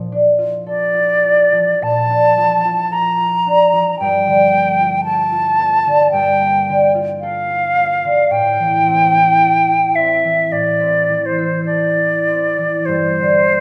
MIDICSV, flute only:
0, 0, Header, 1, 2, 480
1, 0, Start_track
1, 0, Tempo, 1119403
1, 1251, Tempo, 1075269
1, 1735, Time_signature, 4, 2, 24, 8
1, 3171, Tempo, 1100917
1, 4611, Tempo, 1149425
1, 5091, Tempo, 1224490
1, 5849, End_track
2, 0, Start_track
2, 0, Title_t, "Flute"
2, 0, Program_c, 0, 73
2, 287, Note_on_c, 0, 74, 73
2, 784, Note_on_c, 0, 81, 76
2, 791, Note_off_c, 0, 74, 0
2, 1253, Note_on_c, 0, 82, 72
2, 1259, Note_off_c, 0, 81, 0
2, 1731, Note_off_c, 0, 82, 0
2, 1733, Note_on_c, 0, 79, 74
2, 2200, Note_off_c, 0, 79, 0
2, 2202, Note_on_c, 0, 81, 72
2, 2677, Note_off_c, 0, 81, 0
2, 2681, Note_on_c, 0, 79, 76
2, 3039, Note_off_c, 0, 79, 0
2, 3159, Note_on_c, 0, 77, 68
2, 3649, Note_on_c, 0, 79, 81
2, 3655, Note_off_c, 0, 77, 0
2, 4364, Note_on_c, 0, 76, 64
2, 4371, Note_off_c, 0, 79, 0
2, 4611, Note_on_c, 0, 74, 66
2, 4617, Note_off_c, 0, 76, 0
2, 4919, Note_on_c, 0, 72, 59
2, 4925, Note_off_c, 0, 74, 0
2, 5081, Note_off_c, 0, 72, 0
2, 5084, Note_on_c, 0, 74, 64
2, 5555, Note_on_c, 0, 72, 65
2, 5561, Note_off_c, 0, 74, 0
2, 5849, Note_off_c, 0, 72, 0
2, 5849, End_track
0, 0, End_of_file